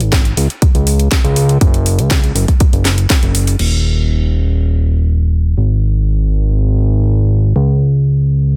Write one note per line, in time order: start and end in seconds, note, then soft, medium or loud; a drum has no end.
0.00 0.34 G#1 medium
0.00 closed hi-hat soft
0.12 kick loud
0.12 snare loud
0.12 closed hi-hat medium
0.25 closed hi-hat soft
0.37 0.48 C#2 medium
0.37 open hi-hat loud
0.50 closed hi-hat soft
0.62 0.72 C#2 soft
0.62 kick loud
0.62 closed hi-hat medium
0.75 1.08 C#2 medium
0.75 closed hi-hat soft
0.87 open hi-hat loud
0.99 closed hi-hat soft
1.12 kick loud
1.12 snare loud
1.12 closed hi-hat loud
1.24 1.58 C#2 loud
1.24 closed hi-hat soft
1.36 open hi-hat medium
1.49 closed hi-hat soft
1.61 2.00 F#1 loud
1.61 kick loud
1.61 closed hi-hat medium
1.74 closed hi-hat soft
1.86 open hi-hat medium
1.99 2.32 C#2 medium
1.99 closed hi-hat soft
2.11 kick loud
2.11 snare loud
2.11 closed hi-hat medium
2.24 closed hi-hat soft
2.35 2.46 F#1 medium
2.35 open hi-hat loud
2.48 kick medium
2.48 closed hi-hat soft
2.60 kick loud
2.60 closed hi-hat medium
2.73 3.07 F#1 loud
2.73 closed hi-hat soft
2.85 snare medium
2.85 open hi-hat loud
2.98 closed hi-hat soft
3.10 kick loud
3.10 snare loud
3.10 closed hi-hat medium
3.22 3.56 F#1 loud
3.22 closed hi-hat soft
3.35 open hi-hat loud
3.47 open hi-hat medium
3.59 5.55 D#1 medium
3.59 crash medium
5.58 7.54 G#1 medium
7.56 8.56 C#2 medium